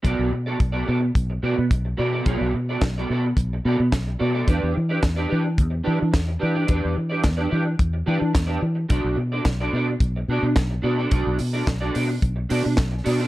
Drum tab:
HH |x-x-x-x-|x-x-x-x-|x-x-x-x-|x-x-x-x-|
CP |--------|--x---x-|--x---x-|--x---x-|
SD |--------|--o---o-|--o---o-|--o---o-|
BD |o-o-o-o-|o-o-o-o-|o-o-o-o-|o-o-o-o-|

HH |x-x-x-x-|xoxoxoxo|
CP |--x---x-|--x---x-|
SD |--o---o-|--o---o-|
BD |o-o-o-o-|o-o-o-o-|